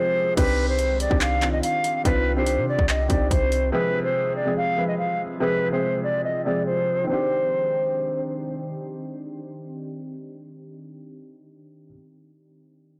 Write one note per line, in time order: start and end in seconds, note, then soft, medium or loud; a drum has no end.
0.00 0.39 C3 loud
0.00 0.34 F3 medium
0.00 0.40 F3 medium
0.00 0.34 G#3 medium
0.00 0.39 G#3 medium
0.00 0.34 C4 medium
0.00 0.37 C4 medium
0.00 0.34 G#4 medium
0.00 0.39 G#4 loud
0.00 0.39 B4 medium
0.00 0.34 C5 medium
0.36 1.08 C2 loud
0.36 0.88 D#3 medium
0.36 3.70 D#3 medium
0.36 0.89 C4 medium
0.36 7.05 C4 medium
0.36 3.70 D4 medium
0.36 0.89 D4 medium
0.36 3.70 G4 medium
0.36 0.89 G4 loud
0.36 0.66 B4 loud
0.36 kick loud
0.36 closed hi-hat medium
0.36 crash medium
0.69 0.99 C5 medium
0.79 closed hi-hat medium
1.00 1.18 D5 medium
1.00 closed hi-hat medium
1.09 1.61 C2 loud
1.09 1.32 D#3 medium
1.09 1.32 C4 medium
1.09 1.33 D4 medium
1.09 1.33 G4 medium
1.09 kick medium
1.21 1.51 F5 medium
1.21 clap loud
1.21 closed hi-hat medium
1.41 1.86 D#3 medium
1.41 1.86 C4 medium
1.41 1.87 D4 medium
1.41 1.87 F4 medium
1.41 clap medium
1.41 closed hi-hat medium
1.52 1.61 D#5 medium
1.63 2.03 F5 medium
1.63 closed hi-hat medium
1.84 closed hi-hat medium
2.04 2.59 C2 loud
2.04 2.27 D#3 medium
2.04 2.27 C4 medium
2.04 2.28 D4 medium
2.04 2.28 F4 loud
2.04 2.35 B4 loud
2.04 kick loud
2.04 closed hi-hat medium
2.36 2.88 D#3 medium
2.36 2.88 C4 medium
2.36 2.88 D4 medium
2.36 2.89 G4 medium
2.36 2.66 C5 medium
2.46 closed hi-hat medium
2.58 2.78 C3 loud
2.69 2.86 D5 medium
2.79 3.09 C2 loud
2.79 kick medium
2.89 3.07 D#5 medium
2.89 clap loud
2.89 closed hi-hat medium
3.08 3.30 C2 loud
3.08 3.53 D#3 medium
3.08 3.53 C4 medium
3.08 3.54 D4 medium
3.08 3.54 G4 medium
3.08 3.28 D5 medium
3.08 kick medium
3.08 closed hi-hat medium
3.31 3.71 C2 loud
3.31 3.70 C5 medium
3.31 kick loud
3.31 closed hi-hat medium
3.52 closed hi-hat medium
3.72 4.24 C3 loud
3.72 7.05 C3 medium
3.72 4.24 F3 medium
3.72 7.05 F3 medium
3.72 7.05 G#3 medium
3.72 4.25 G#3 medium
3.72 4.25 C4 medium
3.72 7.05 G#4 medium
3.72 4.25 G#4 loud
3.72 4.02 B4 loud
4.04 4.34 C5 medium
4.36 4.54 D5 medium
4.45 4.68 C3 medium
4.45 4.68 F3 medium
4.45 4.68 G#3 medium
4.45 4.69 C4 medium
4.45 4.69 G#4 medium
4.57 4.87 F5 loud
4.76 5.21 C3 medium
4.76 5.21 F3 medium
4.76 5.22 G#3 medium
4.76 5.22 C4 medium
4.76 5.22 B4 medium
4.88 4.97 D#5 medium
4.98 5.22 F5 medium
5.40 5.63 C3 loud
5.40 5.63 F3 medium
5.40 5.63 G#3 medium
5.40 5.63 C4 medium
5.40 5.64 G#4 loud
5.40 5.70 B4 loud
5.71 6.23 C3 medium
5.71 6.23 F3 medium
5.71 6.24 G#3 medium
5.71 6.24 C4 medium
5.71 6.24 G#4 medium
5.71 6.02 C5 medium
6.04 6.22 D5 medium
6.24 6.42 D#5 medium
6.45 6.89 C3 medium
6.45 6.90 F3 medium
6.45 6.90 G#3 medium
6.45 6.90 C4 medium
6.45 6.91 G#4 medium
6.45 6.63 D5 medium
6.66 7.06 C5 medium
7.04 11.84 D#3 medium
7.04 11.87 C4 medium
7.09 11.20 D#3 medium
7.09 11.20 C4 medium
7.09 11.20 D4 medium
7.09 11.90 D4 medium
7.09 11.20 G4 medium
7.09 8.30 C5 medium
7.13 11.93 G4 medium